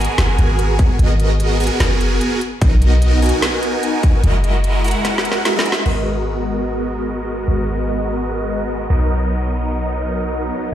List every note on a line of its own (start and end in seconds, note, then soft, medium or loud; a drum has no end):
0.00 0.97 B3 medium
0.00 0.97 F#4 medium
0.00 0.97 G#4 medium
0.00 0.97 A#4 medium
0.00 0.97 G#5 medium
0.00 closed hi-hat medium
0.04 closed hi-hat medium
0.18 0.37 F#1 medium
0.18 snare loud
0.18 closed hi-hat medium
0.38 0.98 G#1 medium
0.38 closed hi-hat medium
0.59 closed hi-hat medium
0.79 kick medium
0.79 closed hi-hat medium
0.99 1.69 G#1 loud
0.99 1.58 B3 loud
0.99 1.58 F#4 loud
0.99 1.58 G#4 medium
0.99 1.58 A#4 medium
0.99 1.58 D#5 loud
0.99 closed hi-hat medium
1.20 closed hi-hat medium
1.40 closed hi-hat medium
1.60 2.40 B3 medium
1.60 2.40 F#4 medium
1.60 2.40 G#4 medium
1.60 2.40 A#4 medium
1.60 2.40 G#5 medium
1.60 closed hi-hat medium
1.60 open hi-hat medium
1.67 closed hi-hat medium
1.80 2.20 F#1 medium
1.80 snare loud
1.80 closed hi-hat medium
2.01 closed hi-hat medium
2.21 closed hi-hat medium
2.41 closed hi-hat medium
2.61 3.32 B1 loud
2.61 3.20 B3 loud
2.61 3.20 D#4 medium
2.61 3.20 F#4 loud
2.61 3.20 A#4 medium
2.61 3.20 D#5 loud
2.61 kick loud
2.61 closed hi-hat medium
2.82 closed hi-hat medium
3.02 closed hi-hat medium
3.22 4.21 B3 medium
3.22 4.21 D#4 medium
3.22 4.21 F#4 medium
3.22 4.21 A#4 medium
3.22 4.21 G#5 medium
3.22 closed hi-hat medium
3.22 open hi-hat loud
3.29 closed hi-hat medium
3.42 snare loud
3.42 closed hi-hat medium
3.63 closed hi-hat medium
3.83 closed hi-hat medium
4.03 kick medium
4.03 closed hi-hat medium
4.23 4.94 F#1 loud
4.23 4.82 G#3 loud
4.23 4.82 E4 medium
4.23 4.82 F#4 medium
4.23 4.82 A#4 medium
4.23 4.82 D#5 loud
4.23 closed hi-hat medium
4.44 closed hi-hat medium
4.64 closed hi-hat medium
4.84 5.43 G#3 medium
4.84 5.43 E4 medium
4.84 5.43 F#4 medium
4.84 5.43 A#4 medium
4.84 5.43 F#5 medium
4.84 closed hi-hat medium
4.84 open hi-hat loud
4.91 closed hi-hat medium
5.05 snare medium
5.05 closed hi-hat medium
5.18 snare medium
5.25 closed hi-hat medium
5.32 snare medium
5.45 5.53 G#3 loud
5.45 5.53 E4 medium
5.45 5.53 F#4 medium
5.45 5.53 A#4 medium
5.45 5.53 E5 loud
5.45 snare medium
5.45 closed hi-hat medium
5.56 5.83 G#3 medium
5.56 5.84 E4 medium
5.56 5.84 F#4 medium
5.56 5.84 A#4 medium
5.56 5.84 E5 medium
5.56 snare loud
5.66 closed hi-hat medium
5.72 snare loud
5.86 7.46 G#1 medium
5.86 8.88 G#3 medium
5.86 8.88 B3 medium
5.86 8.88 F#4 medium
5.86 8.88 A#4 medium
5.86 8.88 D#5 medium
5.86 crash medium
7.48 8.88 G#1 medium
8.90 10.50 B1 medium
8.90 10.70 F#3 medium
8.90 10.70 B3 medium
8.90 10.70 D#4 medium
8.90 10.70 A#4 medium
8.90 10.70 D#5 medium